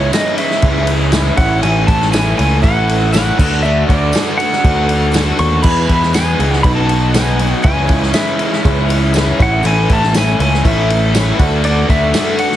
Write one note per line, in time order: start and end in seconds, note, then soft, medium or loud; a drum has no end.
0.00 0.10 C#3 loud
0.00 0.12 E3 loud
0.00 0.12 G#3 soft
0.00 0.12 C#4 soft
0.00 0.13 E4 medium
0.00 0.52 E4 medium
0.00 1.37 E4 medium
0.00 0.52 G#4 medium
0.00 1.37 G#4 medium
0.00 0.13 C#5 medium
0.00 0.52 C#5 medium
0.00 1.37 C#5 medium
0.00 0.52 E5 medium
0.13 0.38 C#3 medium
0.13 0.38 E3 medium
0.13 0.38 G#3 loud
0.13 0.38 C#4 medium
0.13 0.38 E4 medium
0.13 0.38 D#5 medium
0.13 snare loud
0.13 ride loud
0.13 tambourine loud
0.38 0.62 G#3 soft
0.38 0.63 C#4 medium
0.38 0.63 E4 medium
0.38 1.34 E5 loud
0.38 ride medium
0.51 snare soft
0.62 1.29 C#2 medium
0.62 0.88 E3 medium
0.62 0.88 G#3 medium
0.62 0.89 C#4 medium
0.62 1.36 E4 medium
0.62 0.87 E4 medium
0.62 1.38 G#4 medium
0.62 1.36 C#5 medium
0.62 1.36 E5 medium
0.62 kick loud
0.62 ride loud
0.87 1.12 G#3 soft
0.87 1.13 C#4 medium
0.87 1.13 E4 medium
0.87 ride medium
1.12 1.38 C#3 loud
1.12 1.38 E3 loud
1.12 1.38 G#3 loud
1.12 1.39 C#4 loud
1.12 1.38 E4 loud
1.12 snare loud
1.12 ride loud
1.12 tambourine medium
1.37 1.60 A1 medium
1.37 1.62 A2 medium
1.37 1.62 E3 medium
1.37 1.64 C#4 medium
1.37 2.27 E4 medium
1.37 1.64 E4 medium
1.37 3.38 E4 medium
1.37 2.27 A4 medium
1.37 3.38 A4 medium
1.37 2.27 C#5 medium
1.37 3.38 C#5 medium
1.37 2.27 E5 medium
1.37 1.61 F#5 loud
1.37 kick loud
1.37 ride medium
1.41 1.64 A3 soft
1.63 1.85 A1 loud
1.63 1.89 A2 medium
1.63 1.89 E3 medium
1.63 1.89 A3 medium
1.63 1.89 C#4 medium
1.63 1.88 E4 medium
1.63 1.89 G#5 loud
1.63 ride loud
1.87 2.32 A1 loud
1.87 2.12 A3 soft
1.87 2.13 C#4 medium
1.87 2.13 E4 medium
1.87 2.12 A5 medium
1.87 kick medium
1.87 ride medium
2.02 snare soft
2.12 2.38 A2 medium
2.12 2.38 E3 medium
2.12 2.38 A3 medium
2.12 2.38 C#4 medium
2.12 2.36 E4 medium
2.12 2.37 G#5 loud
2.12 snare loud
2.12 ride loud
2.12 tambourine medium
2.37 2.61 C#2 medium
2.37 2.62 A3 soft
2.37 2.63 C#4 medium
2.37 2.63 E4 medium
2.37 2.63 G#5 loud
2.37 ride medium
2.62 3.30 A1 loud
2.62 2.88 E3 medium
2.62 2.88 A3 medium
2.62 2.88 C#4 medium
2.62 3.38 E4 medium
2.62 2.86 E4 medium
2.62 3.37 A4 medium
2.62 3.38 C#5 medium
2.62 3.38 E5 medium
2.62 3.12 F#5 medium
2.62 kick loud
2.62 ride loud
2.87 3.12 A3 soft
2.87 3.12 C#4 medium
2.87 3.13 E4 medium
2.87 ride medium
3.12 3.38 A2 medium
3.12 3.38 E3 medium
3.12 3.38 A3 medium
3.12 3.38 C#4 medium
3.12 3.37 E4 medium
3.12 3.65 F#5 medium
3.12 snare loud
3.12 ride loud
3.12 tambourine loud
3.37 3.83 D2 loud
3.37 3.62 D3 medium
3.37 3.63 A3 soft
3.37 3.64 D4 medium
3.37 3.63 F#4 medium
3.37 4.28 F#4 medium
3.37 5.62 F#4 medium
3.37 4.28 A4 medium
3.37 5.62 A4 medium
3.37 4.28 D5 medium
3.37 5.62 D5 medium
3.37 4.28 F#5 medium
3.37 kick loud
3.37 crash loud
3.63 3.89 D3 medium
3.63 3.89 A3 medium
3.63 3.89 D4 medium
3.63 3.88 F#4 medium
3.63 3.88 E5 loud
3.88 4.11 D2 loud
3.88 4.12 A3 soft
3.88 4.12 D4 medium
3.88 4.13 F#4 medium
3.88 4.40 D5 medium
3.88 kick medium
3.88 ride medium
4.12 4.38 D3 medium
4.12 4.39 A3 medium
4.12 4.39 D4 medium
4.12 4.38 F#4 medium
4.12 snare loud
4.12 ride loud
4.12 tambourine loud
4.37 4.65 D4 medium
4.37 4.64 F#4 medium
4.37 5.41 F#5 loud
4.37 ride medium
4.42 4.64 A3 soft
4.53 snare soft
4.64 5.31 D2 loud
4.64 4.89 D3 medium
4.64 4.90 A3 medium
4.64 4.89 D4 medium
4.64 5.53 F#4 medium
4.64 4.87 F#4 medium
4.64 5.53 A4 medium
4.64 5.53 D5 medium
4.64 5.53 F#5 medium
4.64 kick loud
4.64 ride loud
4.89 5.11 A3 medium
4.89 5.12 D4 soft
4.89 5.12 F#4 medium
4.89 ride medium
5.12 5.38 D3 loud
5.12 5.38 A3 loud
5.12 5.38 D4 loud
5.12 5.36 F#4 loud
5.12 snare loud
5.12 ride loud
5.12 tambourine loud
5.38 5.61 D#2 medium
5.38 5.63 A3 medium
5.38 5.64 D4 medium
5.38 5.63 F#4 medium
5.38 5.62 C#6 loud
5.38 ride medium
5.62 5.88 E2 medium
5.62 5.86 E2 loud
5.62 5.89 B2 medium
5.62 5.89 E3 medium
5.62 5.89 G#3 medium
5.62 5.88 B3 medium
5.62 6.53 E4 medium
5.62 6.64 E4 medium
5.62 5.86 G#4 medium
5.62 6.54 G#4 medium
5.62 6.64 G#4 medium
5.62 6.54 B4 medium
5.62 6.54 E5 medium
5.62 5.87 B5 loud
5.62 kick loud
5.62 crash loud
5.67 6.64 B4 medium
5.87 6.33 E2 medium
5.87 6.13 E3 soft
5.87 6.13 G#3 medium
5.87 6.14 B3 medium
5.87 6.13 G#4 medium
5.87 6.14 B5 loud
5.87 kick medium
5.87 ride medium
6.03 snare soft
6.13 6.39 E2 medium
6.13 6.39 B2 medium
6.13 6.39 E3 medium
6.13 6.39 G#3 medium
6.13 6.39 B3 medium
6.13 6.38 G#4 medium
6.13 6.63 G#5 loud
6.13 snare loud
6.13 ride loud
6.13 tambourine medium
6.39 6.61 C#2 medium
6.39 6.63 E3 soft
6.39 6.64 G#3 medium
6.39 6.63 B3 medium
6.39 6.64 G#4 medium
6.39 ride medium
6.53 snare soft
6.63 7.53 B1 loud
6.63 7.39 B2 loud
6.63 6.89 F#3 medium
6.63 6.89 B3 medium
6.63 7.54 D#4 medium
6.63 6.90 D#4 medium
6.63 7.64 D#4 medium
6.63 7.54 F#4 medium
6.63 6.88 F#4 medium
6.63 7.64 F#4 medium
6.63 7.54 B4 medium
6.63 7.64 B4 medium
6.63 7.54 D#5 medium
6.63 6.75 B5 loud
6.63 kick loud
6.63 ride loud
6.75 7.13 A5 loud
6.89 7.13 B3 medium
6.89 7.14 D#4 medium
6.89 7.14 F#4 medium
6.89 ride medium
7.13 7.39 B2 medium
7.13 7.40 F#3 medium
7.13 7.39 B3 medium
7.13 7.40 D#4 medium
7.13 7.38 F#4 medium
7.13 7.62 G#5 loud
7.13 snare loud
7.13 ride loud
7.13 tambourine medium
7.39 7.63 B3 soft
7.39 7.64 D#4 soft
7.39 7.64 F#4 medium
7.39 ride medium
7.63 7.86 C#2 loud
7.63 7.89 C#3 medium
7.63 7.89 E3 medium
7.63 7.89 G#3 medium
7.63 7.88 C#4 medium
7.63 7.86 E4 medium
7.63 8.54 E4 medium
7.63 9.37 E4 medium
7.63 8.54 G#4 medium
7.63 8.54 C#5 medium
7.63 9.38 C#5 medium
7.63 8.53 E5 medium
7.63 8.15 G#5 loud
7.63 kick loud
7.63 ride loud
7.67 9.39 G#4 medium
7.87 8.11 C#2 loud
7.87 8.13 G#3 soft
7.87 8.13 C#4 medium
7.87 8.13 E4 medium
7.87 kick medium
7.87 ride medium
8.03 snare soft
8.13 8.39 C#3 medium
8.13 8.39 E3 medium
8.13 8.39 G#3 medium
8.13 8.40 C#4 medium
8.13 8.38 E4 loud
8.13 8.61 E5 medium
8.13 snare loud
8.13 ride loud
8.13 tambourine medium
8.39 8.64 G#3 soft
8.39 8.65 C#4 medium
8.39 8.65 E4 medium
8.39 ride medium
8.53 snare soft
8.64 9.31 C#2 loud
8.64 8.89 E3 medium
8.64 8.90 G#3 medium
8.64 8.90 C#4 medium
8.64 9.38 E4 medium
8.64 8.88 E4 medium
8.64 9.40 G#4 medium
8.64 9.38 C#5 medium
8.64 9.38 E5 medium
8.64 kick loud
8.64 ride loud
8.89 9.13 G#3 medium
8.89 9.14 C#4 medium
8.89 9.14 E4 medium
8.89 ride medium
9.14 9.39 C#3 medium
9.14 9.39 E3 loud
9.14 9.39 G#3 loud
9.14 9.38 C#4 loud
9.14 9.37 E4 loud
9.14 snare loud
9.14 ride loud
9.14 tambourine medium
9.38 9.62 A1 loud
9.38 9.62 A2 medium
9.38 9.63 E3 medium
9.38 9.64 A3 medium
9.38 9.63 C#4 medium
9.38 9.63 E4 medium
9.38 11.37 E4 medium
9.38 10.28 E4 medium
9.38 11.37 A4 medium
9.38 10.28 A4 medium
9.38 11.37 C#5 medium
9.38 10.28 C#5 medium
9.38 10.28 E5 medium
9.38 kick loud
9.38 ride medium
9.42 9.64 F#5 loud
9.63 9.86 A1 loud
9.63 9.89 A2 medium
9.63 9.89 E3 medium
9.63 9.89 A3 medium
9.63 9.89 C#4 medium
9.63 9.88 E4 medium
9.63 9.91 G#5 loud
9.63 ride loud
9.89 10.34 A1 loud
9.89 10.14 A3 soft
9.89 10.15 C#4 medium
9.89 10.14 E4 medium
9.89 10.14 A5 loud
9.89 kick medium
9.89 ride medium
10.03 snare soft
10.14 10.39 A2 medium
10.14 10.40 E3 medium
10.14 10.40 A3 medium
10.14 10.40 C#4 medium
10.14 10.39 E4 medium
10.14 10.41 G#5 loud
10.14 snare loud
10.14 ride loud
10.14 tambourine medium
10.39 10.61 C#2 medium
10.39 10.65 A3 medium
10.39 10.65 C#4 medium
10.39 10.64 E4 medium
10.39 10.66 G#5 loud
10.39 ride medium
10.54 snare soft
10.64 11.30 A1 loud
10.64 10.89 E3 medium
10.64 10.90 A3 medium
10.64 10.90 C#4 medium
10.64 11.39 E4 medium
10.64 10.89 E4 medium
10.64 11.38 A4 medium
10.64 11.39 C#5 medium
10.64 11.39 E5 medium
10.64 11.64 E5 medium
10.64 kick loud
10.64 ride loud
10.90 11.14 A3 soft
10.90 11.14 C#4 medium
10.90 11.15 E4 medium
10.90 ride medium
11.14 11.39 A2 medium
11.14 11.39 E3 medium
11.14 11.40 A3 medium
11.14 11.40 C#4 loud
11.14 11.40 E4 loud
11.14 snare loud
11.14 ride loud
11.14 tambourine loud
11.38 11.83 D2 loud
11.38 11.62 D3 medium
11.38 12.56 F#4 medium
11.38 12.28 F#4 loud
11.38 11.65 F#4 medium
11.38 12.56 A4 medium
11.38 12.28 A4 medium
11.38 12.56 D5 medium
11.38 12.28 D5 medium
11.38 12.28 F#5 loud
11.38 kick loud
11.38 ride medium
11.42 11.65 A3 medium
11.42 11.66 D4 medium
11.64 11.89 D3 medium
11.64 11.90 A3 medium
11.64 11.90 D4 medium
11.64 11.89 F#4 medium
11.64 11.90 D5 medium
11.64 ride loud
11.89 12.11 D2 loud
11.89 12.14 A3 soft
11.89 12.15 D4 medium
11.89 12.15 F#4 medium
11.89 12.41 E5 loud
11.89 kick medium
11.89 ride medium
12.14 12.39 D3 medium
12.14 12.40 A3 medium
12.14 12.39 D4 medium
12.14 12.38 F#4 loud
12.14 snare loud
12.14 ride loud
12.14 tambourine loud
12.38 12.56 A3 medium
12.38 12.56 D4 medium
12.38 12.56 F#4 medium
12.38 12.56 F#5 medium
12.38 ride medium
12.52 snare soft